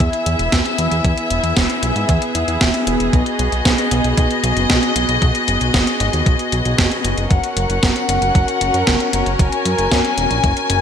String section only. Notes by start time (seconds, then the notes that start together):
Already playing: B3 E4 G#4 E5
3.13 F#4 D#5
7.31 C#4 A#4 F#5
9.39 G#5